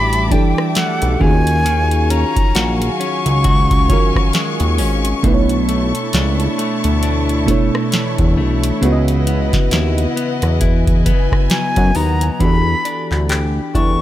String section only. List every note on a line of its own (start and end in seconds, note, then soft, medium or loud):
0.00 1.18 G3 medium
0.00 1.18 E5 medium
0.00 1.18 A5 medium
0.00 1.17 D6 medium
1.21 5.20 F#3 medium
1.21 5.20 F5 medium
1.21 5.20 G#5 medium
1.21 8.78 C#6 medium
5.24 8.79 D4 medium
5.24 12.37 E4 medium
5.24 8.79 A5 medium
8.82 12.37 B4 medium
8.82 12.37 D#5 medium
8.82 10.60 F#5 medium
10.62 12.39 G#5 medium